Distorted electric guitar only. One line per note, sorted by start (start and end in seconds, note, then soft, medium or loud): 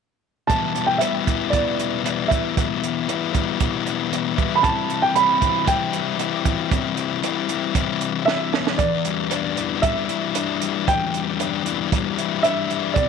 0.48 1.52 E2 medium
0.48 1.01 B2 medium
0.48 0.76 E3 medium
0.48 0.75 G3 medium
0.48 0.75 B3 medium
0.48 0.74 E4 medium
0.74 1.00 E3 soft
0.74 1.01 G3 soft
0.74 1.02 B3 medium
0.74 1.02 E4 medium
1.00 1.28 E3 medium
1.00 1.27 G3 medium
1.00 1.27 B3 medium
1.00 1.26 E4 medium
1.26 1.53 E3 soft
1.26 1.53 G3 soft
1.26 1.54 B3 soft
1.26 1.54 E4 medium
1.52 2.30 E2 medium
1.52 2.30 B2 medium
1.52 2.03 E3 medium
1.52 2.04 G3 medium
1.52 2.05 B3 medium
1.52 2.05 E4 medium
2.03 2.31 E3 medium
2.03 2.31 G3 medium
2.03 2.29 B3 medium
2.03 2.29 E4 medium
2.29 2.56 E3 soft
2.29 2.57 G3 soft
2.29 2.57 B3 medium
2.29 2.58 E4 medium
2.56 3.08 E2 medium
2.56 3.08 B2 medium
2.56 2.84 E3 medium
2.56 2.84 G3 medium
2.56 2.83 B3 medium
2.56 2.82 E4 medium
2.82 3.07 E3 soft
2.82 3.08 G3 soft
2.82 3.08 B3 medium
2.82 3.09 E4 medium
3.07 3.35 E3 medium
3.07 3.34 G3 medium
3.07 3.34 B3 medium
3.07 3.33 E4 medium
3.33 3.60 E3 soft
3.33 3.60 G3 medium
3.33 3.61 B3 medium
3.33 3.61 E4 soft
3.60 4.37 E2 medium
3.60 4.37 B2 medium
3.60 4.11 E3 medium
3.60 4.12 G3 medium
3.60 4.12 B3 medium
3.60 4.13 E4 medium
4.11 4.38 E3 medium
4.11 4.37 G3 medium
4.11 4.36 B3 medium
4.11 4.36 E4 medium
4.36 4.62 E3 soft
4.36 4.63 G3 soft
4.36 4.63 B3 soft
4.36 4.64 E4 medium
4.62 5.65 C3 medium
4.62 5.14 E3 medium
4.62 4.90 G3 medium
4.62 4.89 C4 medium
4.62 4.88 E4 medium
4.88 5.15 G3 soft
4.88 5.16 C4 medium
4.88 5.16 E4 medium
5.14 5.66 E3 medium
5.14 5.42 G3 medium
5.14 5.40 C4 medium
5.14 5.40 E4 medium
5.40 5.66 G3 soft
5.40 5.66 C4 medium
5.40 5.67 E4 medium
5.66 6.44 C3 medium
5.66 6.17 E3 medium
5.66 6.18 G3 medium
5.66 6.18 C4 medium
5.66 6.20 E4 medium
6.18 6.71 E3 medium
6.18 6.46 G3 medium
6.18 6.44 C4 medium
6.18 6.44 E4 medium
6.44 6.70 G3 soft
6.44 6.71 C4 soft
6.44 6.71 E4 medium
6.70 7.22 C3 medium
6.70 7.21 E3 medium
6.70 6.97 G3 medium
6.70 6.96 C4 medium
6.70 6.95 E4 medium
6.96 7.22 G3 soft
6.96 7.23 C4 soft
6.96 7.23 E4 medium
7.22 7.73 E3 medium
7.22 7.49 G3 medium
7.22 7.48 C4 medium
7.22 7.47 E4 medium
7.48 7.74 G3 soft
7.48 7.74 C4 medium
7.48 7.75 E4 medium
7.74 8.51 C3 medium
7.74 8.24 E3 medium
7.74 8.25 G3 medium
7.74 8.26 C4 medium
7.74 8.26 E4 medium
8.26 8.50 E3 medium
8.26 8.51 G3 medium
8.26 8.51 C4 medium
8.26 8.50 E4 medium
8.52 8.77 E2 medium
8.52 8.77 B2 medium
8.52 8.77 E3 medium
8.52 8.77 G3 medium
8.52 8.77 B3 medium
8.52 8.76 E4 medium
8.78 10.09 E2 medium
9.05 9.83 G3 medium
9.31 10.34 D4 medium
9.57 11.42 E3 medium
9.83 10.61 G3 medium
10.09 11.42 E4 medium
10.35 11.38 D4 medium
10.61 11.13 G3 soft
10.88 12.18 E2 medium
11.13 11.91 G3 medium
11.39 12.42 D4 medium
11.65 13.09 E3 medium
11.92 12.69 G3 medium
12.18 13.09 E4 medium
12.43 12.96 D4 medium
12.69 13.09 G3 medium
12.96 13.09 C3 medium